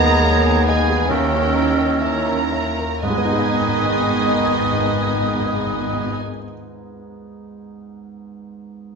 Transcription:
Already playing: D#2 D#3 G#3 B3 D#4 G#4 A#4 D#5 A#5 D#6
0.06 B4
0.24 C#5 D#5
0.46 G#5
0.65 G#4 B4 D#5 G#5
0.90 G#4
1.08 D#2 D#3 E3 C#4 E4 G4 A#4 G5 E6
1.34 C#4
1.53 A#4 D#5
1.77 C#5
1.99 C#4 E4 A#4 C#5 E5
2.03 A#5
2.27 A#5
2.52 E5
2.79 A#4
3.02 G#1 G#2 D#3 B3 D#4 B4 D#5 G#5 D#6
3.08 G#2 G#3
3.15 G#2 B3
3.21 G#2 D#4
3.28 G#2 G#4
3.35 G#2
3.39 G#2 D#5
3.47 G#2
3.54 G#2
3.61 G#2
3.67 G#2
3.74 G#2
3.81 G#2
3.87 G#2
3.94 G#2
4.00 G#2
4.07 G#2
4.13 G#2
4.20 G#2
4.27 G#2
4.34 G#2
4.40 G#2
4.46 G#2
4.53 G#2
4.60 G#2
4.66 G#2
4.72 G#2
4.79 G#2
4.86 G#2
4.92 G#2
4.99 G#2
5.06 G#2
5.13 G#2
5.20 G#2
5.26 G#2
5.33 G#2
5.40 G#2
5.46 G#2
5.53 G#2
5.60 G#2
5.66 G#2
5.73 G#2
5.80 G#2
5.87 G#2
5.93 G#2
6.00 G#2
6.06 G#2

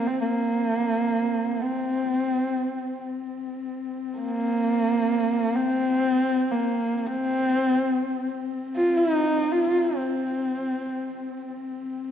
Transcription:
Already playing: C4
0.08 C4
0.22 A#3
1.61 C4
2.35 C4
4.19 A#3
5.56 C4
6.52 A#3
6.65 C4
7.07 C4
8.77 F4
8.97 D#4
9.52 F4
9.96 C4
10.94 C4

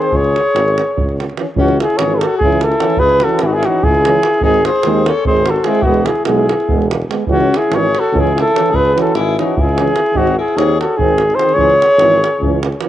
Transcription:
Already playing: C4 G#4
0.00 C5, davul high
0.12 C#2 G#4, davul low
0.16 C#5
0.24 davul high
0.36 davul high
0.54 G#1, davul high
0.68 davul high
0.78 davul high
0.97 C#2, davul low
1.09 davul high
1.20 davul high
1.29 davul high
1.37 E3 C#4, davul high
1.56 C#2 E3 C#4 F#4, davul low
1.68 davul high
1.80 E4 G#4, davul high
1.90 davul high
1.97 G#1 E3 C#4 G#4 C#5, davul high
2.15 G#4 A4 B4
2.21 F#4, davul high
2.38 G#4, davul low
2.42 C#2 E3 C#4 E4
2.52 davul high
2.61 A4, davul high
2.66 E4
2.72 davul high
2.80 E3 C#4, davul high
2.90 davul high
2.97 C#2 G#4 B4, davul low
3.09 davul high
3.20 E3 C#4 F#4 A4, davul high
3.29 davul high
3.39 G#1 E4 G#4, davul high
3.46 D#4 F#4
3.53 E4 G#4
3.63 E3 C#4 F#4, davul high
3.68 D#4
3.83 C#2 E4 G#4, davul low
3.95 davul high
4.05 E3 C#4, davul high
4.23 davul high
4.34 davul high
4.41 G#1 G#3 C4 D#4 G#4, davul low
4.54 davul high
4.65 G#4 C5, davul high
4.76 davul high
4.83 D#2 G#3 C4, davul high
5.06 A4 C#5, davul high
5.25 G#1 G#3 C4 G#4 C5, davul low
5.37 davul high
5.46 F#4, davul high
5.50 A4
5.56 davul high
5.64 G#3 C4 E4 G#4, davul high
5.75 davul high
5.82 E1 B3 F#4, davul low
5.86 G#3 B3
5.94 davul high
6.06 E4 G#4, davul high
6.15 davul high
6.25 B1 G#3 B3 G#4, davul high
6.30 E4
6.49 davul high
6.60 davul high
6.69 E1 G#3 B3, davul low
6.82 davul high
6.91 davul high
7.02 davul high
7.10 G#3 B3, davul high
7.27 C#2 E3 C#4, davul low
7.31 F#4
7.40 davul high
7.54 E4 G#4, davul high
7.62 davul high
7.70 G#1 E3 C#4, davul high
7.75 G#4 C#5
7.95 davul high
8.00 F#4 A4
8.13 C#2 E3 C#4, davul low
8.17 E4 G#4
8.27 davul high
8.35 E4, davul high
8.41 A4
8.48 davul high
8.53 E3 C#4, davul high
8.66 davul high
8.71 C#2 G#4, davul low
8.75 B4
8.85 davul high
8.95 E3 C#4 F#4, davul high
9.01 A4
9.07 davul high
9.14 G#1 E4 G#4, davul high
9.38 E3 C#4 D#4, davul high
9.43 F#4
9.57 C#2 E4 G#4, davul low
9.69 davul high
9.78 E3 C#4, davul high
9.88 davul high
9.96 davul high
10.06 davul high
10.13 G#1 D#3 C4 D#4, davul low
10.17 F#4
10.27 davul high
10.38 E4 G#4
10.48 davul high
10.56 D#2 D#3 C4 G#4 C#5, davul high
10.80 F#4 A4, davul high
10.97 G#1 D#3 C4 D#4 G#4, davul low
11.08 davul high
11.18 davul high
11.30 davul high
11.35 D#3 C4 G#4 C5
11.39 davul high
11.49 davul high
11.54 C#2 E3 C#4 C#5, davul low
11.58 G#4
11.70 davul high
11.82 davul high
11.91 davul high
11.97 G#1 E3 C#4, davul high
12.12 davul high
12.24 davul high
12.40 C#2 E3 C#4, davul low
12.63 davul high
12.72 davul high
12.81 E3 C#4, davul high

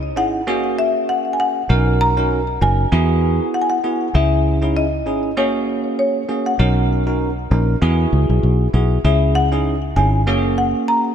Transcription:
Already playing: C#2 D#5
0.16 G#1 C#4 D#4 E4 G#4 F#5
0.47 F#1 A#3 C#4 F#4 G#4
0.79 E5
1.09 F#5
1.33 G#5
1.40 F#5
1.69 B1 C#4 D#4 F#4 A#4
2.01 A#5
2.17 C#4 D#4 F#4 A#4
2.61 F#1 C#4 D#4 F#4 A#4 G#5
2.92 E2 B3 E4 F#4 G#4
3.54 F#5
3.62 G#5
3.70 F#5
3.84 B3 E4 F#4 G#4
4.14 C#2 C#4 E4 G#4 E5
4.62 C#4 D#4 E4 G#4
4.77 D#5
5.06 G#1 C#4 D#4 E4 G#4
5.37 F#1 A#3 C#4 F#4 G#4 C#5
5.99 C#5
6.29 A#3 C#4 F#4 G#4
6.46 F#5
6.59 B1 C#4 D#4 F#4 A#4
7.07 C#4 D#4 F#4 A#4
7.51 A#1 C#4 D#4 F#4 A#4
7.82 E2 B3 E4 F#4 G#4
8.13 C#2
8.29 B1
8.43 B1
8.74 B1 B3 E4 F#4 G#4
9.04 C#2 C#4 E4 G#4 E5
9.35 F#5
9.52 C#4 D#4 E4 G#4
9.96 G#1 C#4 D#4 E4 G#4 G#5
10.27 F#1 A#3 C#4 F#4 G#4
10.58 F#5
10.88 A#5

